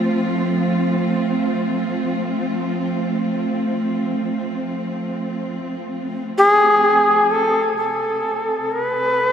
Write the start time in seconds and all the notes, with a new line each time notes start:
Already playing: F3 A3 C4 F4
6.38 G#4
7.31 A4
7.77 C3 A4
8.72 A#4
8.84 B4
9.02 G3